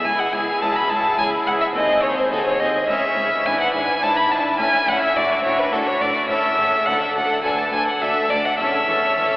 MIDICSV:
0, 0, Header, 1, 8, 480
1, 0, Start_track
1, 0, Tempo, 566572
1, 49, Time_signature, 3, 2, 24, 8
1, 4849, Tempo, 575264
1, 7889, End_track
2, 0, Start_track
2, 0, Title_t, "Violin"
2, 0, Program_c, 0, 40
2, 42, Note_on_c, 0, 80, 76
2, 161, Note_on_c, 0, 78, 65
2, 174, Note_off_c, 0, 80, 0
2, 279, Note_on_c, 0, 80, 69
2, 292, Note_off_c, 0, 78, 0
2, 523, Note_on_c, 0, 81, 73
2, 535, Note_off_c, 0, 80, 0
2, 643, Note_on_c, 0, 83, 70
2, 656, Note_off_c, 0, 81, 0
2, 758, Note_on_c, 0, 81, 77
2, 771, Note_off_c, 0, 83, 0
2, 997, Note_off_c, 0, 81, 0
2, 1002, Note_on_c, 0, 80, 81
2, 1070, Note_off_c, 0, 80, 0
2, 1242, Note_on_c, 0, 78, 71
2, 1291, Note_off_c, 0, 78, 0
2, 1364, Note_on_c, 0, 76, 75
2, 1412, Note_off_c, 0, 76, 0
2, 1480, Note_on_c, 0, 75, 74
2, 1719, Note_on_c, 0, 73, 70
2, 1732, Note_off_c, 0, 75, 0
2, 1836, Note_off_c, 0, 73, 0
2, 1841, Note_on_c, 0, 72, 69
2, 1889, Note_off_c, 0, 72, 0
2, 1963, Note_on_c, 0, 69, 62
2, 2081, Note_off_c, 0, 69, 0
2, 2085, Note_on_c, 0, 73, 67
2, 2203, Note_on_c, 0, 75, 60
2, 2216, Note_off_c, 0, 73, 0
2, 2441, Note_off_c, 0, 75, 0
2, 2446, Note_on_c, 0, 76, 82
2, 2930, Note_on_c, 0, 80, 87
2, 2943, Note_off_c, 0, 76, 0
2, 3049, Note_off_c, 0, 80, 0
2, 3056, Note_on_c, 0, 78, 68
2, 3161, Note_off_c, 0, 78, 0
2, 3166, Note_on_c, 0, 80, 74
2, 3413, Note_on_c, 0, 81, 83
2, 3425, Note_off_c, 0, 80, 0
2, 3533, Note_on_c, 0, 83, 74
2, 3545, Note_off_c, 0, 81, 0
2, 3653, Note_on_c, 0, 81, 71
2, 3666, Note_off_c, 0, 83, 0
2, 3882, Note_off_c, 0, 81, 0
2, 3887, Note_on_c, 0, 80, 78
2, 4138, Note_on_c, 0, 78, 74
2, 4151, Note_off_c, 0, 80, 0
2, 4248, Note_off_c, 0, 78, 0
2, 4254, Note_on_c, 0, 76, 71
2, 4372, Note_on_c, 0, 74, 69
2, 4384, Note_off_c, 0, 76, 0
2, 4604, Note_off_c, 0, 74, 0
2, 4609, Note_on_c, 0, 73, 72
2, 4736, Note_on_c, 0, 71, 72
2, 4749, Note_off_c, 0, 73, 0
2, 4852, Note_on_c, 0, 69, 67
2, 4864, Note_off_c, 0, 71, 0
2, 4973, Note_on_c, 0, 73, 73
2, 4985, Note_off_c, 0, 69, 0
2, 5091, Note_on_c, 0, 74, 65
2, 5103, Note_off_c, 0, 73, 0
2, 5319, Note_off_c, 0, 74, 0
2, 5324, Note_on_c, 0, 76, 81
2, 5797, Note_on_c, 0, 78, 86
2, 5810, Note_off_c, 0, 76, 0
2, 5918, Note_off_c, 0, 78, 0
2, 5925, Note_on_c, 0, 76, 63
2, 6040, Note_off_c, 0, 76, 0
2, 6043, Note_on_c, 0, 78, 68
2, 6273, Note_off_c, 0, 78, 0
2, 6278, Note_on_c, 0, 80, 71
2, 6399, Note_on_c, 0, 81, 69
2, 6412, Note_off_c, 0, 80, 0
2, 6517, Note_off_c, 0, 81, 0
2, 6523, Note_on_c, 0, 80, 72
2, 6637, Note_off_c, 0, 80, 0
2, 6643, Note_on_c, 0, 78, 66
2, 6761, Note_on_c, 0, 76, 80
2, 6773, Note_off_c, 0, 78, 0
2, 6998, Note_on_c, 0, 74, 74
2, 7011, Note_off_c, 0, 76, 0
2, 7124, Note_on_c, 0, 78, 71
2, 7136, Note_off_c, 0, 74, 0
2, 7234, Note_off_c, 0, 78, 0
2, 7239, Note_on_c, 0, 76, 81
2, 7889, Note_off_c, 0, 76, 0
2, 7889, End_track
3, 0, Start_track
3, 0, Title_t, "Violin section"
3, 0, Program_c, 1, 48
3, 32, Note_on_c, 1, 68, 51
3, 510, Note_off_c, 1, 68, 0
3, 520, Note_on_c, 1, 66, 56
3, 989, Note_on_c, 1, 64, 56
3, 1004, Note_off_c, 1, 66, 0
3, 1466, Note_off_c, 1, 64, 0
3, 1479, Note_on_c, 1, 72, 67
3, 2437, Note_on_c, 1, 73, 63
3, 2442, Note_off_c, 1, 72, 0
3, 2913, Note_off_c, 1, 73, 0
3, 2925, Note_on_c, 1, 71, 55
3, 3406, Note_on_c, 1, 76, 69
3, 3407, Note_off_c, 1, 71, 0
3, 5290, Note_off_c, 1, 76, 0
3, 5322, Note_on_c, 1, 73, 62
3, 5561, Note_off_c, 1, 73, 0
3, 5562, Note_on_c, 1, 68, 53
3, 5796, Note_off_c, 1, 68, 0
3, 5805, Note_on_c, 1, 69, 47
3, 6280, Note_off_c, 1, 69, 0
3, 6285, Note_on_c, 1, 71, 52
3, 6756, Note_on_c, 1, 69, 57
3, 6759, Note_off_c, 1, 71, 0
3, 7230, Note_off_c, 1, 69, 0
3, 7249, Note_on_c, 1, 73, 60
3, 7889, Note_off_c, 1, 73, 0
3, 7889, End_track
4, 0, Start_track
4, 0, Title_t, "Violin section"
4, 0, Program_c, 2, 48
4, 57, Note_on_c, 2, 68, 49
4, 278, Note_off_c, 2, 68, 0
4, 289, Note_on_c, 2, 68, 48
4, 523, Note_off_c, 2, 68, 0
4, 535, Note_on_c, 2, 68, 49
4, 763, Note_off_c, 2, 68, 0
4, 773, Note_on_c, 2, 68, 44
4, 1005, Note_off_c, 2, 68, 0
4, 1017, Note_on_c, 2, 68, 49
4, 1245, Note_off_c, 2, 68, 0
4, 1255, Note_on_c, 2, 68, 43
4, 1485, Note_off_c, 2, 68, 0
4, 1497, Note_on_c, 2, 68, 54
4, 1721, Note_off_c, 2, 68, 0
4, 1732, Note_on_c, 2, 68, 51
4, 1955, Note_off_c, 2, 68, 0
4, 1966, Note_on_c, 2, 68, 49
4, 2198, Note_off_c, 2, 68, 0
4, 2208, Note_on_c, 2, 68, 49
4, 2442, Note_off_c, 2, 68, 0
4, 2451, Note_on_c, 2, 68, 51
4, 2681, Note_off_c, 2, 68, 0
4, 2692, Note_on_c, 2, 68, 43
4, 2925, Note_off_c, 2, 68, 0
4, 2935, Note_on_c, 2, 64, 54
4, 3157, Note_off_c, 2, 64, 0
4, 3167, Note_on_c, 2, 64, 45
4, 3398, Note_off_c, 2, 64, 0
4, 3408, Note_on_c, 2, 64, 52
4, 3643, Note_off_c, 2, 64, 0
4, 3652, Note_on_c, 2, 64, 46
4, 3881, Note_off_c, 2, 64, 0
4, 3891, Note_on_c, 2, 64, 51
4, 4116, Note_off_c, 2, 64, 0
4, 4126, Note_on_c, 2, 64, 50
4, 4362, Note_off_c, 2, 64, 0
4, 4366, Note_on_c, 2, 66, 53
4, 4597, Note_off_c, 2, 66, 0
4, 4607, Note_on_c, 2, 66, 52
4, 4833, Note_off_c, 2, 66, 0
4, 4843, Note_on_c, 2, 66, 54
4, 5076, Note_off_c, 2, 66, 0
4, 5086, Note_on_c, 2, 66, 49
4, 5319, Note_off_c, 2, 66, 0
4, 5325, Note_on_c, 2, 69, 48
4, 5547, Note_off_c, 2, 69, 0
4, 5557, Note_on_c, 2, 69, 49
4, 5787, Note_off_c, 2, 69, 0
4, 5797, Note_on_c, 2, 69, 55
4, 6027, Note_off_c, 2, 69, 0
4, 6037, Note_on_c, 2, 69, 51
4, 6260, Note_off_c, 2, 69, 0
4, 6270, Note_on_c, 2, 69, 53
4, 6508, Note_off_c, 2, 69, 0
4, 6517, Note_on_c, 2, 69, 48
4, 6745, Note_off_c, 2, 69, 0
4, 6755, Note_on_c, 2, 69, 47
4, 6983, Note_off_c, 2, 69, 0
4, 6993, Note_on_c, 2, 69, 43
4, 7224, Note_off_c, 2, 69, 0
4, 7234, Note_on_c, 2, 69, 48
4, 7462, Note_off_c, 2, 69, 0
4, 7472, Note_on_c, 2, 69, 45
4, 7713, Note_off_c, 2, 69, 0
4, 7723, Note_on_c, 2, 69, 55
4, 7889, Note_off_c, 2, 69, 0
4, 7889, End_track
5, 0, Start_track
5, 0, Title_t, "Viola section"
5, 0, Program_c, 3, 48
5, 32, Note_on_c, 3, 64, 54
5, 265, Note_off_c, 3, 64, 0
5, 275, Note_on_c, 3, 64, 46
5, 507, Note_off_c, 3, 64, 0
5, 517, Note_on_c, 3, 64, 50
5, 754, Note_off_c, 3, 64, 0
5, 764, Note_on_c, 3, 64, 48
5, 992, Note_off_c, 3, 64, 0
5, 1002, Note_on_c, 3, 64, 52
5, 1225, Note_off_c, 3, 64, 0
5, 1235, Note_on_c, 3, 64, 53
5, 1475, Note_off_c, 3, 64, 0
5, 1480, Note_on_c, 3, 60, 53
5, 1712, Note_off_c, 3, 60, 0
5, 1722, Note_on_c, 3, 60, 49
5, 1949, Note_off_c, 3, 60, 0
5, 1959, Note_on_c, 3, 60, 50
5, 2189, Note_off_c, 3, 60, 0
5, 2199, Note_on_c, 3, 60, 48
5, 2438, Note_off_c, 3, 60, 0
5, 2441, Note_on_c, 3, 61, 51
5, 2673, Note_off_c, 3, 61, 0
5, 2683, Note_on_c, 3, 61, 50
5, 2921, Note_off_c, 3, 61, 0
5, 2923, Note_on_c, 3, 62, 59
5, 3149, Note_off_c, 3, 62, 0
5, 3159, Note_on_c, 3, 62, 47
5, 3387, Note_off_c, 3, 62, 0
5, 3397, Note_on_c, 3, 62, 52
5, 3633, Note_off_c, 3, 62, 0
5, 3644, Note_on_c, 3, 62, 53
5, 3881, Note_off_c, 3, 62, 0
5, 3883, Note_on_c, 3, 61, 51
5, 4114, Note_off_c, 3, 61, 0
5, 4124, Note_on_c, 3, 61, 53
5, 4361, Note_off_c, 3, 61, 0
5, 4362, Note_on_c, 3, 62, 55
5, 4589, Note_off_c, 3, 62, 0
5, 4600, Note_on_c, 3, 62, 49
5, 4830, Note_off_c, 3, 62, 0
5, 4841, Note_on_c, 3, 62, 50
5, 5077, Note_off_c, 3, 62, 0
5, 5087, Note_on_c, 3, 62, 52
5, 5319, Note_on_c, 3, 61, 52
5, 5320, Note_off_c, 3, 62, 0
5, 5553, Note_off_c, 3, 61, 0
5, 5563, Note_on_c, 3, 61, 51
5, 5796, Note_off_c, 3, 61, 0
5, 5800, Note_on_c, 3, 62, 56
5, 6030, Note_off_c, 3, 62, 0
5, 6040, Note_on_c, 3, 62, 51
5, 6266, Note_off_c, 3, 62, 0
5, 6276, Note_on_c, 3, 62, 51
5, 6501, Note_off_c, 3, 62, 0
5, 6511, Note_on_c, 3, 62, 46
5, 6739, Note_off_c, 3, 62, 0
5, 6749, Note_on_c, 3, 62, 49
5, 6981, Note_off_c, 3, 62, 0
5, 6991, Note_on_c, 3, 62, 49
5, 7231, Note_off_c, 3, 62, 0
5, 7235, Note_on_c, 3, 61, 53
5, 7468, Note_off_c, 3, 61, 0
5, 7478, Note_on_c, 3, 61, 43
5, 7708, Note_off_c, 3, 61, 0
5, 7718, Note_on_c, 3, 61, 49
5, 7889, Note_off_c, 3, 61, 0
5, 7889, End_track
6, 0, Start_track
6, 0, Title_t, "Harpsichord"
6, 0, Program_c, 4, 6
6, 52, Note_on_c, 4, 37, 39
6, 266, Note_off_c, 4, 37, 0
6, 289, Note_on_c, 4, 37, 38
6, 504, Note_off_c, 4, 37, 0
6, 528, Note_on_c, 4, 37, 46
6, 528, Note_on_c, 4, 61, 38
6, 533, Note_on_c, 4, 64, 36
6, 533, Note_on_c, 4, 68, 41
6, 744, Note_off_c, 4, 37, 0
6, 768, Note_on_c, 4, 37, 43
6, 873, Note_off_c, 4, 61, 0
6, 876, Note_off_c, 4, 64, 0
6, 877, Note_off_c, 4, 68, 0
6, 983, Note_off_c, 4, 37, 0
6, 1010, Note_on_c, 4, 61, 36
6, 1011, Note_on_c, 4, 37, 48
6, 1012, Note_on_c, 4, 64, 37
6, 1018, Note_on_c, 4, 68, 42
6, 1224, Note_off_c, 4, 37, 0
6, 1249, Note_on_c, 4, 37, 44
6, 1353, Note_off_c, 4, 61, 0
6, 1354, Note_off_c, 4, 64, 0
6, 1358, Note_off_c, 4, 68, 0
6, 1462, Note_off_c, 4, 37, 0
6, 1493, Note_on_c, 4, 39, 40
6, 1704, Note_off_c, 4, 39, 0
6, 1723, Note_on_c, 4, 39, 41
6, 1939, Note_off_c, 4, 39, 0
6, 1968, Note_on_c, 4, 60, 39
6, 1969, Note_on_c, 4, 39, 46
6, 1973, Note_on_c, 4, 66, 39
6, 1974, Note_on_c, 4, 68, 42
6, 2183, Note_off_c, 4, 39, 0
6, 2211, Note_on_c, 4, 39, 44
6, 2313, Note_off_c, 4, 60, 0
6, 2316, Note_off_c, 4, 66, 0
6, 2317, Note_off_c, 4, 68, 0
6, 2425, Note_off_c, 4, 39, 0
6, 2452, Note_on_c, 4, 61, 36
6, 2453, Note_on_c, 4, 37, 48
6, 2460, Note_on_c, 4, 64, 41
6, 2465, Note_on_c, 4, 68, 37
6, 2667, Note_off_c, 4, 37, 0
6, 2692, Note_on_c, 4, 37, 47
6, 2897, Note_off_c, 4, 61, 0
6, 2901, Note_off_c, 4, 64, 0
6, 2903, Note_off_c, 4, 68, 0
6, 2906, Note_off_c, 4, 37, 0
6, 2929, Note_on_c, 4, 44, 41
6, 3145, Note_off_c, 4, 44, 0
6, 3171, Note_on_c, 4, 44, 40
6, 3385, Note_off_c, 4, 44, 0
6, 3410, Note_on_c, 4, 62, 39
6, 3411, Note_on_c, 4, 44, 52
6, 3412, Note_on_c, 4, 64, 39
6, 3414, Note_on_c, 4, 71, 42
6, 3625, Note_off_c, 4, 44, 0
6, 3644, Note_on_c, 4, 44, 46
6, 3754, Note_off_c, 4, 62, 0
6, 3756, Note_off_c, 4, 64, 0
6, 3757, Note_off_c, 4, 71, 0
6, 3862, Note_off_c, 4, 44, 0
6, 3890, Note_on_c, 4, 61, 36
6, 3892, Note_on_c, 4, 45, 49
6, 3894, Note_on_c, 4, 64, 39
6, 3899, Note_on_c, 4, 69, 39
6, 4106, Note_off_c, 4, 45, 0
6, 4128, Note_on_c, 4, 45, 48
6, 4335, Note_off_c, 4, 61, 0
6, 4337, Note_off_c, 4, 64, 0
6, 4340, Note_off_c, 4, 69, 0
6, 4344, Note_off_c, 4, 45, 0
6, 4372, Note_on_c, 4, 45, 44
6, 4586, Note_off_c, 4, 45, 0
6, 4614, Note_on_c, 4, 45, 46
6, 4828, Note_off_c, 4, 45, 0
6, 4855, Note_on_c, 4, 62, 40
6, 4856, Note_on_c, 4, 45, 53
6, 4857, Note_on_c, 4, 66, 38
6, 4860, Note_on_c, 4, 69, 39
6, 5066, Note_off_c, 4, 45, 0
6, 5092, Note_on_c, 4, 45, 47
6, 5195, Note_off_c, 4, 62, 0
6, 5196, Note_off_c, 4, 66, 0
6, 5198, Note_off_c, 4, 69, 0
6, 5304, Note_off_c, 4, 45, 0
6, 5331, Note_on_c, 4, 61, 38
6, 5333, Note_on_c, 4, 45, 48
6, 5336, Note_on_c, 4, 64, 38
6, 5343, Note_on_c, 4, 69, 39
6, 5543, Note_off_c, 4, 45, 0
6, 5572, Note_on_c, 4, 45, 49
6, 5771, Note_off_c, 4, 61, 0
6, 5774, Note_off_c, 4, 64, 0
6, 5777, Note_off_c, 4, 69, 0
6, 5782, Note_off_c, 4, 45, 0
6, 5811, Note_on_c, 4, 38, 45
6, 6021, Note_off_c, 4, 38, 0
6, 6049, Note_on_c, 4, 38, 44
6, 6260, Note_off_c, 4, 38, 0
6, 6286, Note_on_c, 4, 57, 37
6, 6287, Note_on_c, 4, 38, 48
6, 6290, Note_on_c, 4, 62, 35
6, 6292, Note_on_c, 4, 69, 43
6, 6498, Note_off_c, 4, 38, 0
6, 6521, Note_on_c, 4, 38, 44
6, 6627, Note_off_c, 4, 57, 0
6, 6630, Note_off_c, 4, 62, 0
6, 6630, Note_off_c, 4, 69, 0
6, 6734, Note_off_c, 4, 38, 0
6, 6755, Note_on_c, 4, 38, 49
6, 6758, Note_on_c, 4, 57, 36
6, 6761, Note_on_c, 4, 62, 40
6, 6764, Note_on_c, 4, 69, 41
6, 6972, Note_off_c, 4, 38, 0
6, 6997, Note_on_c, 4, 38, 45
6, 7105, Note_off_c, 4, 57, 0
6, 7107, Note_off_c, 4, 62, 0
6, 7109, Note_off_c, 4, 69, 0
6, 7215, Note_off_c, 4, 38, 0
6, 7240, Note_on_c, 4, 40, 43
6, 7459, Note_off_c, 4, 40, 0
6, 7487, Note_on_c, 4, 40, 41
6, 7703, Note_off_c, 4, 40, 0
6, 7728, Note_on_c, 4, 40, 49
6, 7730, Note_on_c, 4, 57, 39
6, 7731, Note_on_c, 4, 61, 39
6, 7733, Note_on_c, 4, 69, 41
6, 7889, Note_off_c, 4, 40, 0
6, 7889, Note_off_c, 4, 57, 0
6, 7889, Note_off_c, 4, 61, 0
6, 7889, Note_off_c, 4, 69, 0
6, 7889, End_track
7, 0, Start_track
7, 0, Title_t, "Cello section"
7, 0, Program_c, 5, 48
7, 38, Note_on_c, 5, 37, 57
7, 106, Note_off_c, 5, 37, 0
7, 277, Note_on_c, 5, 37, 47
7, 345, Note_off_c, 5, 37, 0
7, 518, Note_on_c, 5, 37, 56
7, 586, Note_off_c, 5, 37, 0
7, 761, Note_on_c, 5, 37, 46
7, 829, Note_off_c, 5, 37, 0
7, 993, Note_on_c, 5, 37, 49
7, 1061, Note_off_c, 5, 37, 0
7, 1236, Note_on_c, 5, 37, 53
7, 1304, Note_off_c, 5, 37, 0
7, 1471, Note_on_c, 5, 39, 60
7, 1539, Note_off_c, 5, 39, 0
7, 1714, Note_on_c, 5, 39, 47
7, 1782, Note_off_c, 5, 39, 0
7, 1956, Note_on_c, 5, 39, 58
7, 2024, Note_off_c, 5, 39, 0
7, 2202, Note_on_c, 5, 39, 52
7, 2269, Note_off_c, 5, 39, 0
7, 2440, Note_on_c, 5, 37, 52
7, 2508, Note_off_c, 5, 37, 0
7, 2679, Note_on_c, 5, 37, 57
7, 2747, Note_off_c, 5, 37, 0
7, 2919, Note_on_c, 5, 44, 59
7, 2986, Note_off_c, 5, 44, 0
7, 3164, Note_on_c, 5, 44, 53
7, 3231, Note_off_c, 5, 44, 0
7, 3401, Note_on_c, 5, 44, 56
7, 3469, Note_off_c, 5, 44, 0
7, 3647, Note_on_c, 5, 44, 50
7, 3715, Note_off_c, 5, 44, 0
7, 3888, Note_on_c, 5, 45, 53
7, 3956, Note_off_c, 5, 45, 0
7, 4131, Note_on_c, 5, 45, 58
7, 4198, Note_off_c, 5, 45, 0
7, 4366, Note_on_c, 5, 45, 57
7, 4434, Note_off_c, 5, 45, 0
7, 4607, Note_on_c, 5, 45, 54
7, 4675, Note_off_c, 5, 45, 0
7, 4843, Note_on_c, 5, 45, 57
7, 4910, Note_off_c, 5, 45, 0
7, 5077, Note_on_c, 5, 45, 53
7, 5143, Note_off_c, 5, 45, 0
7, 5316, Note_on_c, 5, 45, 54
7, 5383, Note_off_c, 5, 45, 0
7, 5559, Note_on_c, 5, 45, 63
7, 5626, Note_off_c, 5, 45, 0
7, 5797, Note_on_c, 5, 38, 61
7, 5864, Note_off_c, 5, 38, 0
7, 6039, Note_on_c, 5, 38, 51
7, 6106, Note_off_c, 5, 38, 0
7, 6273, Note_on_c, 5, 38, 53
7, 6340, Note_off_c, 5, 38, 0
7, 6512, Note_on_c, 5, 38, 51
7, 6578, Note_off_c, 5, 38, 0
7, 6747, Note_on_c, 5, 38, 49
7, 6814, Note_off_c, 5, 38, 0
7, 6987, Note_on_c, 5, 38, 61
7, 7053, Note_off_c, 5, 38, 0
7, 7234, Note_on_c, 5, 40, 55
7, 7301, Note_off_c, 5, 40, 0
7, 7477, Note_on_c, 5, 40, 50
7, 7543, Note_off_c, 5, 40, 0
7, 7719, Note_on_c, 5, 40, 55
7, 7786, Note_off_c, 5, 40, 0
7, 7889, End_track
8, 0, Start_track
8, 0, Title_t, "Double bass section"
8, 0, Program_c, 6, 48
8, 46, Note_on_c, 6, 37, 53
8, 114, Note_off_c, 6, 37, 0
8, 286, Note_on_c, 6, 37, 51
8, 353, Note_off_c, 6, 37, 0
8, 519, Note_on_c, 6, 37, 51
8, 587, Note_off_c, 6, 37, 0
8, 761, Note_on_c, 6, 37, 52
8, 829, Note_off_c, 6, 37, 0
8, 1005, Note_on_c, 6, 37, 56
8, 1073, Note_off_c, 6, 37, 0
8, 1239, Note_on_c, 6, 37, 52
8, 1307, Note_off_c, 6, 37, 0
8, 1479, Note_on_c, 6, 39, 58
8, 1546, Note_off_c, 6, 39, 0
8, 1716, Note_on_c, 6, 39, 62
8, 1784, Note_off_c, 6, 39, 0
8, 1955, Note_on_c, 6, 39, 51
8, 2023, Note_off_c, 6, 39, 0
8, 2199, Note_on_c, 6, 39, 52
8, 2267, Note_off_c, 6, 39, 0
8, 2438, Note_on_c, 6, 37, 55
8, 2506, Note_off_c, 6, 37, 0
8, 2684, Note_on_c, 6, 37, 59
8, 2751, Note_off_c, 6, 37, 0
8, 2919, Note_on_c, 6, 32, 60
8, 2987, Note_off_c, 6, 32, 0
8, 3165, Note_on_c, 6, 32, 58
8, 3232, Note_off_c, 6, 32, 0
8, 3409, Note_on_c, 6, 32, 56
8, 3476, Note_off_c, 6, 32, 0
8, 3641, Note_on_c, 6, 32, 48
8, 3708, Note_off_c, 6, 32, 0
8, 3885, Note_on_c, 6, 33, 54
8, 3953, Note_off_c, 6, 33, 0
8, 4127, Note_on_c, 6, 33, 59
8, 4195, Note_off_c, 6, 33, 0
8, 4368, Note_on_c, 6, 33, 58
8, 4436, Note_off_c, 6, 33, 0
8, 4606, Note_on_c, 6, 33, 58
8, 4674, Note_off_c, 6, 33, 0
8, 4845, Note_on_c, 6, 33, 53
8, 4911, Note_off_c, 6, 33, 0
8, 5082, Note_on_c, 6, 33, 49
8, 5149, Note_off_c, 6, 33, 0
8, 5324, Note_on_c, 6, 33, 54
8, 5390, Note_off_c, 6, 33, 0
8, 5556, Note_on_c, 6, 33, 58
8, 5623, Note_off_c, 6, 33, 0
8, 5800, Note_on_c, 6, 38, 63
8, 5867, Note_off_c, 6, 38, 0
8, 6037, Note_on_c, 6, 38, 62
8, 6104, Note_off_c, 6, 38, 0
8, 6277, Note_on_c, 6, 38, 57
8, 6344, Note_off_c, 6, 38, 0
8, 6512, Note_on_c, 6, 38, 51
8, 6579, Note_off_c, 6, 38, 0
8, 6752, Note_on_c, 6, 38, 56
8, 6819, Note_off_c, 6, 38, 0
8, 6993, Note_on_c, 6, 38, 57
8, 7059, Note_off_c, 6, 38, 0
8, 7232, Note_on_c, 6, 28, 56
8, 7298, Note_off_c, 6, 28, 0
8, 7476, Note_on_c, 6, 28, 58
8, 7542, Note_off_c, 6, 28, 0
8, 7723, Note_on_c, 6, 28, 53
8, 7790, Note_off_c, 6, 28, 0
8, 7889, End_track
0, 0, End_of_file